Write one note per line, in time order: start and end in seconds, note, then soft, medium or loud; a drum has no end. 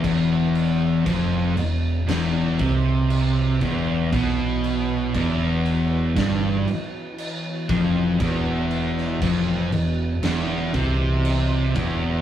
0.03 1.02 E1 medium
0.03 1.05 E2 loud
0.03 12.21 E3 medium
0.03 12.21 B3 medium
0.03 12.21 F#4 medium
0.03 kick loud
0.03 crash medium
0.55 crash medium
1.06 1.54 F1 medium
1.06 1.56 F2 loud
1.06 kick loud
1.06 crash medium
1.57 2.05 E1 medium
1.57 1.98 E2 medium
1.57 crash medium
2.08 2.55 E1 medium
2.08 2.58 E2 loud
2.08 snare loud
2.08 crash medium
2.59 3.57 C2 loud
2.59 3.59 C3 loud
2.59 kick loud
2.59 crash medium
3.10 crash medium
3.61 4.09 E1 medium
3.61 4.11 E2 loud
3.61 kick loud
3.61 crash medium
4.12 5.10 B1 medium
4.12 5.12 B2 loud
4.12 kick loud
4.12 crash medium
4.64 crash medium
5.14 6.12 E1 medium
5.14 6.15 E2 loud
5.14 kick loud
5.14 crash medium
5.65 crash medium
6.16 6.64 G1 loud
6.16 6.65 G2 loud
6.16 kick loud
6.16 snare loud
6.16 crash medium
6.67 crash medium
7.18 crash medium
7.69 8.16 F1 medium
7.69 8.18 F2 loud
7.69 kick loud
7.69 crash medium
8.20 9.18 E1 loud
8.20 9.20 E2 loud
8.20 kick loud
8.20 crash medium
8.71 crash medium
8.98 snare soft
9.22 9.69 F1 medium
9.22 9.71 F2 loud
9.22 kick loud
9.22 crash medium
9.72 10.20 E1 medium
9.72 10.13 E2 medium
9.72 crash medium
10.23 10.71 E1 loud
10.23 10.73 E2 loud
10.23 snare loud
10.23 crash medium
10.74 11.72 C2 loud
10.74 11.74 C3 loud
10.74 kick loud
10.74 crash medium
11.25 crash medium
11.75 12.21 E1 medium
11.75 12.21 E2 loud
11.75 kick loud
11.75 crash medium